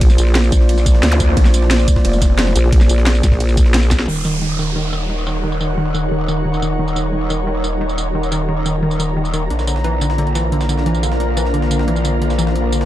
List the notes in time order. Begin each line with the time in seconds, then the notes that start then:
Already playing: A#1 A#3 F4 C5 D5
0.01 kick, closed hi-hat, ride
0.10 snare, tambourine
0.18 A#1, closed hi-hat, ride, tambourine
0.27 snare
0.35 snare, closed hi-hat, ride
0.44 tambourine
0.52 A#1, kick, closed hi-hat, ride, tambourine
0.61 snare
0.69 closed hi-hat, ride
0.78 snare, tambourine
0.86 kick, closed hi-hat, ride, tambourine
0.95 snare
1.03 D2, snare, closed hi-hat, ride
1.12 zap
1.20 kick, closed hi-hat, ride, tambourine
1.37 A#1, kick, closed hi-hat, ride
1.45 snare, tambourine
1.54 closed hi-hat, ride, tambourine
1.62 snare
1.71 snare, closed hi-hat, ride
1.79 tambourine
1.88 kick, closed hi-hat, ride, tambourine
1.96 kick, snare
2.05 F1, closed hi-hat, ride
2.13 closed hi-hat, tambourine
2.22 kick, snare, closed hi-hat, ride, tambourine
2.39 snare, closed hi-hat, ride
2.47 snare
2.56 A#1, closed hi-hat, ride, tambourine
2.64 snare
2.72 kick, closed hi-hat, ride
2.81 snare, tambourine
2.89 A#1, closed hi-hat, ride, tambourine
2.98 snare
3.06 snare, closed hi-hat, ride
3.15 tambourine
3.23 A#1, kick, snare, closed hi-hat, ride, tambourine
3.32 kick, snare
3.40 closed hi-hat, ride
3.49 snare, tambourine
3.57 kick, closed hi-hat, ride, tambourine
3.66 snare
3.74 snare, closed hi-hat, ride
3.83 tambourine
3.91 kick, snare, closed hi-hat, ride, tambourine
4.00 snare
4.08 D#1 D#3 D#4 A#4 D#5 F#5, crash, downlifter
4.17 tambourine
4.25 D#3, tambourine
4.37 C#5
4.42 D#3
4.48 F#5
4.59 D#3, tambourine
4.76 D#3
4.93 D#3, tambourine
5.10 D#3
5.18 tambourine
5.27 D#3, tambourine
5.44 D#3
5.50 A#5, tambourine
5.61 D#3, tambourine
5.78 D#3
5.94 D#3, tambourine
6.12 D#3
6.28 D#3, tambourine
6.45 D#3
6.54 tambourine
6.62 D#3, tambourine
6.79 D#3
6.88 tambourine
6.96 D#3, tambourine
7.13 D#3
7.30 D#3, tambourine
7.47 D#3
7.64 D#3, tambourine
7.81 D#3
7.89 tambourine
7.98 D#3, tambourine
8.15 D#3
8.23 tambourine
8.32 D#3, tambourine
8.49 D#3
8.66 D#3, tambourine
8.83 D#3
8.91 tambourine
9.00 D#3, tambourine
9.17 D#3
9.25 tambourine
9.34 D#3, tambourine
9.50 A#1 D3 A#3 D4 F4 C5 D5, closed hi-hat
9.59 snare, tambourine
9.67 D3, closed hi-hat, tambourine
9.76 A#4, snare
9.84 E3, closed hi-hat
10.01 D3 F5, closed hi-hat, tambourine
10.10 snare
10.18 D3, closed hi-hat
10.27 closed hi-hat
10.35 E3, snare, closed hi-hat, tambourine
10.52 D3, closed hi-hat
10.61 snare, tambourine
10.69 D3, closed hi-hat, tambourine
10.78 snare
10.86 E3, closed hi-hat
10.95 tambourine
11.03 D3, closed hi-hat, tambourine
11.12 snare
11.20 D3, closed hi-hat
11.37 E3, closed hi-hat, tambourine
11.45 snare
11.54 D3, closed hi-hat
11.62 snare
11.71 D3, closed hi-hat, tambourine
11.79 snare
11.88 E3, closed hi-hat
11.96 tambourine
12.05 D3, closed hi-hat, tambourine
12.22 D3, closed hi-hat
12.30 snare, tambourine
12.39 E3, closed hi-hat, tambourine
12.47 snare
12.56 D3, closed hi-hat
12.72 D3, closed hi-hat, tambourine
12.81 snare